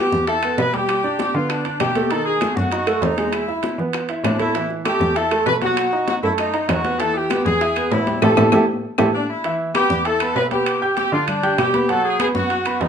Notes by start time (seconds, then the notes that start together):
Already playing: B3 B4
0.00 G4
0.12 E2, high bongo, high conga
0.27 E4 A4 E5, high bongo, high timbale
0.43 B3 B4, high conga, high timbale, claves
0.58 B2 B4, high bongo, low bongo, low timbale
0.74 G3 G4, high bongo, high conga, high timbale
0.89 high bongo, high conga, high timbale, claves
1.04 D4 D5, high bongo, high conga
1.19 G4, high bongo, high conga, high timbale, low timbale
1.35 D3 B3 F4 B4, high bongo, high conga
1.50 D4, high bongo, high conga, high timbale, claves
1.65 D4 D5, high conga, high timbale
1.80 B2 G4, high bongo, low bongo, high conga, high timbale, low timbale, claves
1.95 A3 A4, high bongo, high conga, high timbale
2.10 D#3 D#4 A4, high bongo, high conga, high timbale
2.26 G#4, high bongo, high conga
2.41 A3 A4, high bongo, high conga, high timbale, low timbale, claves
2.56 F#2 F#4, high bongo, high conga
2.72 D#4 D#5, high bongo, high timbale
2.87 A3 A4, high timbale, claves
3.02 E2 D#4, high bongo, low bongo, low timbale
3.17 G#3 G#4, high bongo, high conga, high timbale
3.33 E4, high bongo, high conga, high timbale, claves
3.48 E4 E5, high bongo, high conga
3.63 high bongo, high conga, high timbale, low timbale
3.79 E3 B3 B4, high bongo, high conga
3.93 high bongo, high conga, high timbale, claves
4.09 E4 E5, high conga, high timbale
4.24 A2 D4, high bongo, low bongo, high conga, high timbale, low timbale, claves
4.39 A3 E4 A4, high bongo, high conga, high timbale
4.55 E3 E4, high bongo, high conga, high timbale
4.70 high bongo, high conga
4.85 A3 G4 A4, high bongo, high conga, high timbale, low timbale, claves
5.01 E2, high bongo, high conga
5.16 E4 A4 E5, high bongo, high timbale
5.31 A3 A4, high conga, high timbale, claves
5.46 B2 B4, high bongo, low bongo, low timbale
5.62 F#3 F#4, high bongo, high conga, high timbale
5.77 high bongo, high conga, high timbale, claves
5.93 D#4 D#5, high bongo, high conga
6.08 F#4, high bongo, high conga, high timbale, low timbale
6.23 F#2 A3 E4 A4, high bongo, high conga
6.38 D#4, high bongo, high conga, high timbale, claves
6.54 D#4 D#5, high conga, high timbale
6.69 E2 F#4, high bongo, low bongo, high conga, high timbale, low timbale, claves
6.84 B3 B4, high bongo, high conga, high timbale
6.99 E3 E4 A4, high bongo, high conga, high timbale
7.15 G4, high bongo, high conga
7.30 B3 B4, high bongo, high conga, high timbale, low timbale, claves
7.46 E2 G#4, high bongo, high conga
7.61 E4 E5, high bongo, high conga, high timbale
7.76 B3 B4, high conga, high timbale, claves
7.91 A2 E4, high bongo, low bongo, low timbale
8.07 G3 G4, high bongo, high conga, high timbale
8.22 A2 E4 G4 A4, low bongo, high conga, high timbale, claves
8.37 A2 E4 G4 A4, low bongo, high conga, high timbale, claves
8.52 A2 E4 G4 A4, low bongo, high conga, high timbale, claves
8.98 A2 E4 G4 A4, low bongo, high conga, high timbale, claves
9.14 D4
9.30 E4
9.44 E3 E4 E5, high conga, high timbale
9.60 high conga
9.75 B3 G4 B4 B5, high conga, high timbale, low timbale, claves
9.90 E2, high conga
10.05 E4 A4 E5 E6, high conga, high timbale
10.20 B3 B4 B5, high conga, high timbale, claves
10.36 B2 B4, low timbale
10.51 B3 G4 B4 B5, high conga, high timbale
10.66 high conga, high timbale, claves
10.82 G4 G5 G6, high conga
10.97 G4, high conga, high timbale, low timbale
11.13 D3 D4 F4 D5 D6, high conga
11.28 D4, high conga, low conga, high timbale, claves
11.43 G4 G5 G6, high conga, low conga, high timbale
11.58 B2 G4, high conga, high timbale, low timbale, claves
11.74 B3 B4 B5, high conga, high timbale
11.89 F#3 F#4 A4 F#5, high conga, high timbale
12.04 G#4, high conga
12.20 B3 G#4 B4 B5, high conga, high timbale, low timbale, claves
12.35 F#2 F#4, high conga
12.50 F#4 F#5 F#6, high conga, high timbale
12.65 B3 B4 B5, high conga, high timbale, claves
12.81 E2 D#4, high conga, low timbale